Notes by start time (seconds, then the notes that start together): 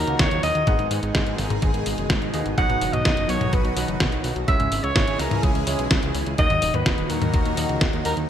Already playing: A#2 D#3 F#3 A#3 D#4 F#4 A#4 D#5
0.07 C#2, closed hi-hat
0.19 D#2 C#5, kick, snare, closed hi-hat
0.31 D#2, closed hi-hat
0.43 D#2 D#5, open hi-hat
0.55 D#2, closed hi-hat
0.67 G#1 G#2 B2 D#3 G#3 B3 D#4 G#4 F#5, kick, closed hi-hat
0.79 G#1, closed hi-hat, high tom
0.91 G#2, open hi-hat
1.03 G#1, closed hi-hat
1.15 G#2, kick, snare, closed hi-hat
1.27 G#2, closed hi-hat
1.38 G#1, snare, open hi-hat
1.50 G#1, closed hi-hat, high tom
1.62 G#1, kick, closed hi-hat
1.74 G#1, closed hi-hat
1.86 G#1, open hi-hat
1.98 F#1, closed hi-hat
2.10 G#2, kick, snare, closed hi-hat
2.22 G#1, closed hi-hat
2.34 D#2 B2 B3 D#4 G#4 D#5, open hi-hat
2.46 G#1, closed hi-hat
2.58 B1 B2 F#3 B3 D#4 F#4 B4 F#5, kick, closed hi-hat
2.70 B1, closed hi-hat, high tom
2.81 F#1, open hi-hat
2.93 B1 D#5, closed hi-hat, high tom
3.05 F#1, kick, snare, closed hi-hat
3.17 F#1, closed hi-hat
3.29 B1 C#5, open hi-hat
3.41 B1, closed hi-hat, high tom
3.53 B1 B4, kick, closed hi-hat
3.65 B1, closed hi-hat
3.77 B1 B2 F#3 B3 D#4 B4, open hi-hat
3.88 F#1, closed hi-hat
4.00 B1, kick, snare, closed hi-hat
4.12 B1, closed hi-hat
4.24 B1, open hi-hat
4.36 B1, closed hi-hat
4.48 C#2 C#3 E3 G#3 C#4 E4 G#4 E5, kick, closed hi-hat
4.60 C#2, closed hi-hat, high tom
4.72 G#1, open hi-hat
4.84 C#2 C#5, closed hi-hat
4.96 G#1, kick, snare, closed hi-hat
5.08 G#1, closed hi-hat
5.19 C#2 A#4, snare, open hi-hat
5.31 C#2, closed hi-hat, high tom
5.43 C#2 G#4, kick, closed hi-hat
5.55 C#2, closed hi-hat
5.67 C#2 C#3 G#3 C#4 E4 G#4 C#5, open hi-hat
5.79 B1, closed hi-hat
5.91 C#2, kick, snare, closed hi-hat
6.03 C#2, closed hi-hat
6.15 C#2, open hi-hat
6.26 C#2, closed hi-hat
6.38 D#2 A#2 D#3 F#3 D#4 F#4 D#5, kick, closed hi-hat
6.50 D#2, closed hi-hat, high tom
6.62 D#1, open hi-hat
6.74 D#2 B4, closed hi-hat, high tom
6.86 D#1, kick, snare, closed hi-hat
6.98 D#1, closed hi-hat
7.10 D#2 A#4, open hi-hat
7.22 D#2, closed hi-hat, high tom
7.34 D#2, kick, closed hi-hat
7.46 D#2, closed hi-hat
7.57 D#2 D#3 A#3 D#4 F#4 D#5, open hi-hat
7.69 C#2, closed hi-hat
7.81 D#2, kick, snare, closed hi-hat
7.93 D#2, closed hi-hat
8.05 D#2 A#4, open hi-hat
8.17 D#2, closed hi-hat